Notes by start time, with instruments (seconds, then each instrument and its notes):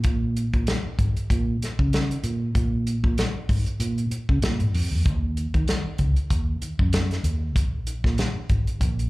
0.03 fingered electric bass A#2, kick, closed hi-hat
0.36 closed hi-hat
0.53 fingered electric bass A#2, kick, closed hi-hat
0.67 snare, closed hi-hat
0.85 muted fingered electric bass stroke
0.99 fingered electric bass G#2, kick, closed hi-hat
1.16 closed hi-hat
1.30 fingered electric bass A#2, kick, closed hi-hat
1.62 muted fingered electric bass stroke, snare, closed hi-hat
1.79 fingered electric bass C#3, kick
1.93 snare, closed hi-hat
2.11 closed hi-hat
2.23 fingered electric bass A#2, closed hi-hat
2.55 fingered electric bass A#2, kick, closed hi-hat
2.87 closed hi-hat
3.03 fingered electric bass A#2, kick
3.18 snare, closed hi-hat
3.35 muted fingered electric bass stroke
3.49 fingered electric bass G#2, kick, open hi-hat
3.66 closed hi-hat
3.80 fingered electric bass A#2, closed hi-hat
3.98 closed hi-hat
4.11 muted fingered electric bass stroke, closed hi-hat
4.29 fingered electric bass C#3, kick
4.42 fingered electric bass A#2, snare, closed hi-hat
4.60 fingered electric bass G#2, closed hi-hat
4.74 fingered electric bass F2, open hi-hat
4.91 fingered electric bass D#2
5.06 fingered electric bass D#2, kick, closed hi-hat
5.37 closed hi-hat
5.54 fingered electric bass D#3, kick, closed hi-hat
5.67 snare, closed hi-hat
5.84 muted fingered electric bass stroke
5.98 fingered electric bass C#2, kick, closed hi-hat
6.16 closed hi-hat
6.30 fingered electric bass D#2, kick, closed hi-hat
6.62 muted fingered electric bass stroke, closed hi-hat
6.79 fingered electric bass F#2, kick
6.93 snare, closed hi-hat
7.11 snare, closed hi-hat
7.24 fingered electric bass D#2, closed hi-hat
7.56 fingered electric bass A#1, kick, closed hi-hat
7.87 closed hi-hat
8.04 fingered electric bass A#2, kick, snare
8.18 snare, closed hi-hat
8.36 muted fingered electric bass stroke
8.49 fingered electric bass G#1, kick, closed hi-hat
8.67 closed hi-hat
8.81 fingered electric bass A#1, kick, closed hi-hat
8.99 closed hi-hat